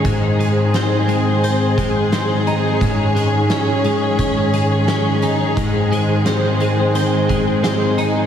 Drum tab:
HH |xxxxxxxx|xxxxxxxx|xxxxxxxx|
SD |--o---o-|--o---o-|--o---o-|
BD |o----o--|o---o---|o----o--|